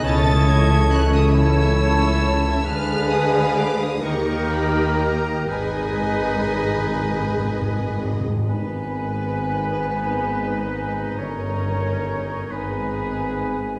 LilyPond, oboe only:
\new Staff \with { instrumentName = "Oboe" } { \time 6/8 \key gis \minor \tempo 4. = 44 cis''4. cis''4. | b'4 r8 ais'4. | b'2~ b'8 r8 | b'2. |
cis''4. b'4. | }